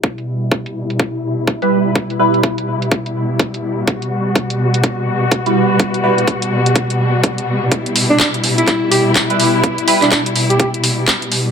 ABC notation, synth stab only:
X:1
M:4/4
L:1/16
Q:"Swing 16ths" 1/4=125
K:Em
V:1 name="Synth stab"
z12 z [G,EB]3- | [G,EB]2 [G,EB]2 z12 | z12 z [G,EB]3- | [G,EB]2 [G,EB]2 z12 |
z12 z [G,EB]3- | [G,EB]2 [G,EB]2 z12 |]